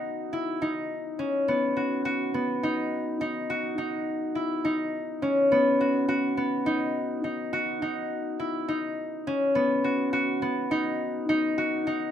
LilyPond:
\new Staff \with { instrumentName = "Harp" } { \time 7/8 \key b \major \tempo 4 = 104 dis'8 e'8 dis'4 cis'8 b8 fis'8 | fis'8 b8 dis'4 dis'8 fis'8 dis'8~ | dis'8 e'8 dis'4 cis'8 b8 fis'8 | fis'8 b8 dis'4 dis'8 fis'8 dis'8~ |
dis'8 e'8 dis'4 cis'8 b8 fis'8 | fis'8 b8 dis'4 dis'8 fis'8 dis'8 | }